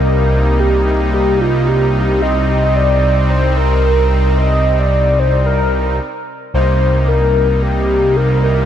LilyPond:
<<
  \new Staff \with { instrumentName = "Soft synth lead" } { \time 4/4 \key c \minor \tempo 4 = 111 bes'4 g'4 g'8 f'8 g'4 | ees''4 d''4 c''8 bes'4. | ees''8. d''8. c''8 bes'4 r4 | c''4 bes'4 g'4 bes'8 bes'8 | }
  \new Staff \with { instrumentName = "Supersaw synth" } { \time 4/4 \key c \minor << { <c g ees'>1~ | <c g ees'>1~ | <c g ees'>2. r4 | <c g ees'>1 | } \\ { bes1 | c'1~ | c'2. r4 | bes1 | } >> }
  \new Staff \with { instrumentName = "Analog synth bass" } { \clef bass \time 4/4 \key c \minor c,1~ | c,1~ | c,2. r4 | c,1 | }
>>